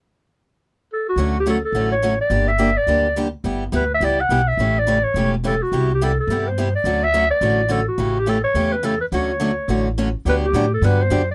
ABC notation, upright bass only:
X:1
M:4/4
L:1/8
Q:"Swing" 1/4=212
K:D
V:1 name="Upright bass" clef=bass
z8 | D,,4 A,,,4 | G,,,4 D,,4 | G,,,2 D,,2 C,,2 B,,,2 |
A,,,4 E,,,4 | =C,,4 G,,4 | D,,4 A,,,4 | A,,,4 E,,4 |
D,,4 A,,,4 | [K:G] D,,2 A,,2 G,,2 F,,2 |]